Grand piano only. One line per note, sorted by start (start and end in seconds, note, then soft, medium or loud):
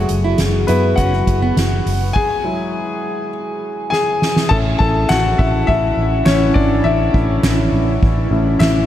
0.00 2.11 G#3 soft
0.00 2.11 A3 soft
0.00 0.97 F#4 medium
0.67 0.97 B3 medium
0.67 0.98 B4 medium
0.96 2.12 F#4 medium
0.96 2.18 F#5 medium
2.13 3.88 G#4 medium
2.13 3.87 G#5 loud
2.44 3.29 F#3 medium
2.44 3.29 G#3 soft
2.44 3.29 E4 medium
3.90 4.47 G#4 medium
3.90 4.52 G#5 medium
4.49 4.89 A3 medium
4.49 4.90 C#4 medium
4.49 4.90 E4 medium
4.49 4.58 A4 medium
4.49 4.56 A5 loud
4.79 5.08 A4 medium
4.79 5.10 A5 medium
5.09 5.38 F#4 medium
5.09 5.39 F#5 loud
5.38 5.67 E4 medium
5.38 5.66 E5 medium
5.67 6.23 E4 medium
5.67 6.28 E5 loud
6.25 6.54 C#4 medium
6.25 6.56 C#5 medium
6.54 6.83 D4 medium
6.54 6.85 D5 medium
6.84 7.69 A3 medium
6.84 7.69 C#4 medium
6.84 8.30 E4 medium
6.84 8.58 E5 loud
8.31 8.57 A3 soft
8.31 8.58 C#4 soft
8.31 8.58 E4 medium
8.59 8.86 E4 medium
8.59 8.86 E5 medium